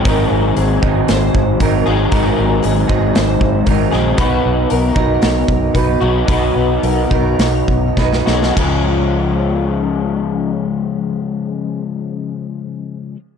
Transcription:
<<
  \new Staff \with { instrumentName = "Twelve-string acoustic guitar" } { \time 4/4 \key des \major \tempo 4 = 111 bes'4 aes'8 aes'8 c''4 bes'8 aes'8 | bes'4 aes'8 aes'8 c''4 bes'8 aes'8 | ces''4 bes'8 bes'8 des''4 ces''8 aes'8 | ces''4 bes'8 bes'8 des''4 ces''8 aes'8 |
des'8 r2. r8 | r1 | }
  \new Staff \with { instrumentName = "Overdriven electric guitar" } { \time 4/4 \key des \major <aes, ees ges c' ees' aes'>2.~ <aes, ees ges c' ees' aes'>8 <aes, ees ges c' ees' aes'>8 | <aes, ees ges c' ees' aes'>2.~ <aes, ees ges c' ees' aes'>8 <aes, ees ges c' ees' aes'>8 | <ces ges ces' ees' ges'>2.~ <ces ges ces' ees' ges'>8 <ces ges ces' ees' ges'>8 | <ces ges ces' ees' ges'>2.~ <ces ges ces' ees' ges'>8 <ces ges ces' ees' ges'>8 |
<des f aes des' f'>1~ | <des f aes des' f'>1 | }
  \new Staff \with { instrumentName = "Clean electric guitar" } { \clef bass \time 4/4 \key des \major <aes, ees ges c' ees'>4. <aes, ees ges c' ees'>4. <aes, ees ges c' ees'>4 | <aes, ees ges c' ees'>4. <aes, ees ges c' ees'>4. <aes, ees ges c' ees'>4 | <ces ges ees'>4. <ces ges ees'>4. <ces ges ees'>4 | <ces ges ees'>4. <ces ges ees'>4. <ces ges ees'>4 |
<des f aes>1~ | <des f aes>1 | }
  \new Staff \with { instrumentName = "Fingered electric bass" } { \clef bass \time 4/4 \key des \major aes,,8 aes,,8 aes,,8 aes,,8 aes,,8 aes,,8 aes,,8 aes,,8 | aes,,8 aes,,8 aes,,8 aes,,8 aes,,8 aes,,8 aes,,8 bes,,8 | ces,8 ces,8 ces,8 ces,8 ces,8 ces,8 ces,8 ces,8 | ces,8 ces,8 ces,8 ces,8 ces,8 ces,8 ces,8 ces,8 |
des,1~ | des,1 | }
  \new DrumStaff \with { instrumentName = "Drums" } \drummode { \time 4/4 <hho bd>4 hho8 bd8 <hho sn>8 bd8 <hho bd>4 | <hho bd>4 hho8 bd8 <hho sn>8 bd8 <hho bd>8 sn8 | <hho bd>4 hho8 bd8 <hho sn>8 bd8 <hho bd>4 | <hho bd>4 hho8 bd8 <hho sn>8 bd8 <bd sn>16 sn16 sn16 sn16 |
<cymc bd>4 r4 r4 r4 | r4 r4 r4 r4 | }
>>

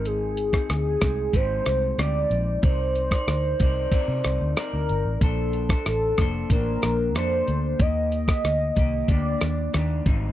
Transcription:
<<
  \new Staff \with { instrumentName = "Soft synth lead" } { \time 4/4 \key ees \lydian \tempo 4 = 93 aes'4 aes'4 c''4 d''4 | c''2. bes'4 | a'4 a'4 bes'4 c''4 | ees''2 d''4. r8 | }
  \new Staff \with { instrumentName = "Clean electric guitar" } { \time 4/4 \key ees \lydian <aes c' ees'>8. <c' ees'>8. <aes c' ees'>8 <aes c' ees' g'>4 <aes c' ees' g'>4 | <c' ees' bes' d''>8. <ees' bes' d''>8. <c' ees' bes' d''>8 <c' ees' bes' d''>4 <c' ees' bes' d''>4 | <bes d' a' c''>8. <d' a' c''>8. <bes d' a' c''>8 <bes d' c''>4 <bes d' a' c''>4 | <ees bes g'>8. <bes g'>8. <ees bes g'>8 <bes d' g'>4 <ees bes d' g'>8 <aes, g c' ees'>8 | }
  \new Staff \with { instrumentName = "Fingered electric bass" } { \clef bass \time 4/4 \key ees \lydian aes,,4 d,8 c,8 aes,,8 c,8 d,8 bes,,8 | c,4 d,8 c,8 r16 c16 c,16 d,16 r16 d,16 g,,16 a,,16 | bes,,4 a,,8 f,,8 a,,8 bes,,8 f,8 d,8 | ees,4 d,8 c,8 d,8 ees,8 ees,8 aes,,8 | }
  \new DrumStaff \with { instrumentName = "Drums" } \drummode { \time 4/4 hh8 hh16 <bd ss>16 <hh ss>8 <hh bd ss>8 <hh bd>8 <hh ss>8 <hh ss>8 hh8 | <hh bd>8 hh16 <bd ss>16 <hh ss>8 <hh bd>8 <hh bd>8 <hh ss>8 <hh ss>8 hh8 | <hh bd>8 hh16 <bd ss>16 <hh ss>8 <hh bd ss>8 <hh bd>8 <hh ss>8 <hh ss>8 hh8 | <hh bd>8 hh16 <bd ss>16 <hh ss>8 <hh bd>8 <hh bd>8 <hh ss>8 <hh ss>8 <hh bd>8 | }
>>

